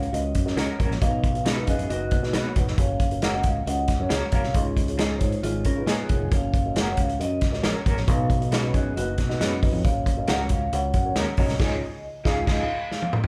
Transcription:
Already playing: C#2 F5
0.03 closed hi-hat
0.12 C#2 C#4 F#4 A#4 D#5, closed hi-hat
0.35 F#2, kick, closed hi-hat
0.45 C#4 F#4 A#4 D#5, snare
0.56 C#2 A#3 C#4 F#4 A#4, snare, closed hi-hat
0.79 A1 A#3 C#4 F#4 A#4 C#5, kick, closed hi-hat
0.90 A#1, snare
1.01 B1 B2 D#4 F#4 B4 D#5 F5, kick, closed hi-hat
1.24 kick, closed hi-hat
1.34 D#4 F#4 B4 D#5, closed hi-hat
1.45 B3 C#4 D#4 F#4 A#4 B4, snare, closed hi-hat
1.56 D#4 F#4 B4 D#5
1.61 F5
1.67 F#2 B3 G#4 D#5, kick, closed hi-hat
1.79 F#2, closed hi-hat
1.89 F#1 A#3 D#4 F#4 B4 D#5, closed hi-hat
2.11 B2, kick, closed hi-hat
2.22 D#4 F#4 B4 D#5, snare
2.33 B1 B3 D#4 F#4 B4 C#5, snare, closed hi-hat
2.56 E1 D#4 F#4 B4 F#5, kick, closed hi-hat
2.68 F1, snare
2.77 F#1 C#4 F#4 A#4 C#5 F5, kick, closed hi-hat
3.00 kick, closed hi-hat
3.11 C#4 F#4 A#4 C#5, closed hi-hat
3.22 A#3 C#4 F#4 A#4 F#5, snare, closed hi-hat
3.33 C#4 F#4 A#4 D#5
3.43 C#2 F5, kick, closed hi-hat
3.66 C#2 C#4 F#4 A#4 D#5 F#5, closed hi-hat
3.88 kick, snare, closed hi-hat
4.00 F#2 C#4 F#4 A#4 C#5
4.09 C#2 A#3 C#4 F#4 A#4, snare, closed hi-hat
4.32 B1 A#3 C#4 F#4 A#4 C#5 F5, kick, closed hi-hat
4.43 C2, snare
4.54 C#2 C#3 D#4 F4 G#4 C#5 D#5, kick, closed hi-hat
4.77 kick, closed hi-hat
4.88 D#4 F4 G#4 C#5, closed hi-hat
4.98 F3 G#3 D#4 G#4, snare, closed hi-hat
5.10 D#4 F4 G#4 C#5
5.16 C5
5.21 G#2 C#5, kick, closed hi-hat
5.32 closed hi-hat
5.43 G#1 G#3 D#4 F4 G#4 C#5, closed hi-hat
5.65 C#3 C#4 A#4, kick, closed hi-hat
5.76 D#4 F4 G#4 B4
5.86 A#2 F3 G#3 B3 D#4 G#4, snare, closed hi-hat
5.92 C#5
6.09 E1 D#4 F4 G#4 A#4, kick, closed hi-hat
6.21 F1
6.32 F#1 C#4 F#4 A#4 C#5, kick, closed hi-hat
6.36 F5
6.54 kick, closed hi-hat
6.65 C#4 F#4 A#4 D#5
6.76 A#3 C#4 F#4 A#4, snare, closed hi-hat
6.80 F#5
6.87 C#4 F#4 A#4 C#5
6.97 C#2 F5, kick, closed hi-hat
7.09 closed hi-hat
7.19 F#2 C#4 F#4 A#4 D#5, closed hi-hat
7.23 D#5
7.41 C#2, kick, snare, closed hi-hat
7.52 C#4 F#4 A#4 D#5, snare
7.63 A#1 A#3 C#4 F#4 A#4, snare, closed hi-hat
7.85 A1 A#3 C#4 F#4 A#4 C#5, kick, closed hi-hat
7.97 A#1, snare
8.07 B1 B2 D#4 F#4 B4 F5, kick, closed hi-hat
8.30 kick, closed hi-hat
8.40 D#4 F#4 B4 D#5, closed hi-hat
8.52 B3 C#4 D#4 F#4 A#4 B4, snare, closed hi-hat
8.62 D#4 F#4 B4 C#5
8.74 F#2 B3 G#4 D#5, kick, closed hi-hat
8.95 F#1 A#3 D#4 F#4 B4 D#5, closed hi-hat
9.18 B2, kick, snare, closed hi-hat
9.29 D#4 F#4 B4 D#5, snare
9.40 F#2 B3 D#4 F#4 B4 C#5, snare, closed hi-hat
9.62 D#4 F#4 B4 D#5, kick, open hi-hat
9.73 F2
9.84 F#1 C#4 F#4 A#4 C#5 F5, kick, closed hi-hat
10.06 kick, closed hi-hat
10.17 C#4 F#4 A#4 D#5
10.28 C#2 A#3 C#4 F#4 A#4 F#5, snare, closed hi-hat
10.39 C#4 F#4 A#4 C#5
10.49 C#2 F5, kick, closed hi-hat
10.72 C#2 C#4 F#4 A#4 C#5 F#5, closed hi-hat
10.94 F#2, kick, closed hi-hat
11.05 C#4 F#4 A#4 C#5
11.16 D#2 A#3 C#4 F#4 A#4, snare, closed hi-hat
11.37 B1 A#3 C#4 F#4 A#4 C#5 D#5, kick, open hi-hat
11.49 C2, snare
11.59 C#2 C#3 F3 G#3 D#4 F4 G#4 C#5, kick, snare, crash
12.24 C#2 F3 G#3 D#4 F4 G#4 F5, kick, snare
12.46 C#2 F3 G#3 D#4 F4 G#4 D#5, kick, snare, crash
12.92 snare
13.02 high tom
13.13 mid tom
13.24 floor tom

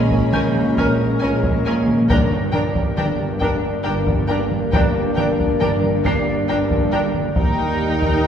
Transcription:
Already playing: A#1 A#2 G#3 C#4 G#4 A#4 C#5 A#5 B5 F6
0.11 taiko
0.33 A#1 A#2 C#4 A#4 G#5 G6, taiko mid
0.56 taiko mid
0.77 C#4 A#4 G#5 F6, taiko
1.20 A#1 A#2 C#4 A#4 G#5
1.43 taiko
1.65 C#4 A#4 G#5
1.88 taiko mid
2.09 G1 G2 A#3 D4 G4 A#4 D5 G5 A#6, taiko
2.52 D4 A#4 G5, taiko mid
2.75 taiko
2.96 G1 G2 D4 A#4 G5, taiko mid
3.19 taiko mid
3.39 D4 A#4 G5, taiko
3.84 G1 G2 D4 A#4 G5
4.07 taiko
4.27 D4 A#4 G5
4.51 taiko mid
4.72 G1 G2 D4 A#4 G5, taiko
5.16 D4 A#4 G5, taiko mid
5.40 taiko
5.60 G1 G2 D4 A#4 G5, taiko mid
5.83 taiko mid
6.04 D4 A#4 G5 C7, taiko
6.48 G1 G2 D4 A#4 G5
6.70 taiko
6.92 D4 A#4 G5
7.15 taiko mid
7.36 D#2 G3 D#4 G4 A#4 D#5 G5, taiko
8.02 taiko

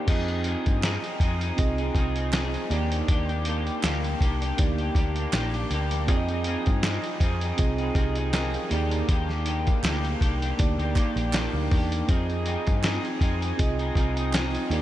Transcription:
0.06 F2 F3 C4 D#4 F4 G#4 D#5, kick, closed hi-hat, crash
0.28 C4 D#4 G#4, closed hi-hat
0.44 F3 C4 D#4 G#4, closed hi-hat
0.66 G2, kick, closed hi-hat
0.83 F3 C4 D#4 G#4, snare, clap, closed hi-hat
1.04 closed hi-hat
1.20 F2 F3 C4 D#4 G#4, kick, closed hi-hat
1.41 C4 D#4 G#4, closed hi-hat
1.56 C2 C4 F4 G#4 D#5, kick, closed hi-hat
1.78 D#4 G#4, closed hi-hat
1.82 C4
1.94 C2 F3 C4 D#4, kick, closed hi-hat
1.99 G#4
2.16 C4 D#4 G#4, closed hi-hat
2.33 F3 C4 D#4 G#4, snare, clap, closed hi-hat
2.54 closed hi-hat
2.69 D#2 D#3 A#3 D4 D#4 G4 D5, closed hi-hat
2.74 G4
2.92 closed hi-hat
3.08 D#2 D#3 A#3 D4 G4, kick, closed hi-hat
3.29 A#3 D4 G4, closed hi-hat
3.45 D#3 A#3 D4 G4, closed hi-hat
3.67 closed hi-hat
3.83 D2 A#3 D4 G4, snare, clap, closed hi-hat
4.04 closed hi-hat
4.20 C2 D#3 A#3 D4 G4, kick, closed hi-hat
4.42 A#3 D4 G4, closed hi-hat
4.57 D2 A#3 D#4 G4 D5, kick, closed hi-hat
4.78 A#3 D4 G4, closed hi-hat
4.95 D2 D#3 A#3 D4 G4, kick, closed hi-hat
5.16 A#3 D4 G4, closed hi-hat
5.33 A#1 D#3 A#3 D4 G4, snare, clap, closed hi-hat
5.54 A#3 D4 G4, closed hi-hat
5.71 D2 A#3 D4 G4, closed hi-hat
5.91 closed hi-hat
6.07 F2 F3 C4 D#4 F4 G#4 D5, kick, closed hi-hat
6.16 D#5
6.29 C4 D#4 G#4, closed hi-hat
6.44 F3 C4, closed hi-hat
6.49 D#4 G#4
6.66 G2, kick, closed hi-hat
6.83 F3 C4 D#4 G#4, snare, clap, closed hi-hat
7.04 closed hi-hat
7.20 F2 F3 C4 D#4 G#4, kick, closed hi-hat
7.41 D#4 G#4, closed hi-hat
7.45 C4
7.58 C2 C4 F4 G#4 D#5, kick, closed hi-hat
7.78 D#4 G#4, closed hi-hat
7.83 C4
7.95 C2 F3 C4 D#4 G4 D#5, kick, closed hi-hat
7.99 G#4
8.15 D#4 G#4, closed hi-hat
8.20 C4
8.33 F3 C4 D#4 G#4 A#4 G5, snare, clap, closed hi-hat
8.54 G#4 F5, closed hi-hat
8.70 D#2 D#3 A#3 D4 D#4 G4 D5, closed hi-hat
8.91 closed hi-hat
9.08 D#2 D#3 A#3 D4 G4, kick, closed hi-hat
9.29 A#3 D4 G4, snare
9.45 D#3 A#3 D4 G4, closed hi-hat
9.67 kick, closed hi-hat
9.83 D2 A#3 D4 G4, snare, clap, closed hi-hat
10.05 closed hi-hat
10.21 C2 D#3 A#3 D4 G4, kick, closed hi-hat
10.42 A#3 D4 G4, closed hi-hat
10.58 D2 A#3 D#4 G4 D5, kick, closed hi-hat
10.78 D2 A#3 D4 G4, closed hi-hat
10.96 D#3 A#3 D4 G4, kick, clap, closed hi-hat
11.16 A#1 A#3 D4 G4, closed hi-hat
11.33 D#3 A#3 D4 G4, snare, clap, closed hi-hat
11.53 D2
11.71 E2 D#3 A#3 D4 G4, kick, open hi-hat
11.92 closed hi-hat
12.08 F2 F3 C4 D#4 F4 G#4 D#5, kick, closed hi-hat
12.29 C4 D#4 G#4, closed hi-hat
12.46 F3 C4 D#4 G#4, closed hi-hat
12.67 G2, kick, closed hi-hat
12.83 F3 C4 D#4 G#4, snare, clap, closed hi-hat
13.05 closed hi-hat
13.21 F2 F3 C4 D#4 G#4, kick, closed hi-hat
13.41 C4 D#4 G#4, closed hi-hat
13.57 C2 C4 F4 G#4 D#5, kick, closed hi-hat
13.79 C4 D#4 G#4, closed hi-hat
13.95 C2 F3 C4 D#4 G#4, kick, closed hi-hat
14.16 C4 D#4 G#4, closed hi-hat
14.33 F3 C4 D#4 G#4, snare, clap, closed hi-hat
14.55 closed hi-hat
14.70 D#2 D#3 A#3 D4 D#4 G4 D5, closed hi-hat

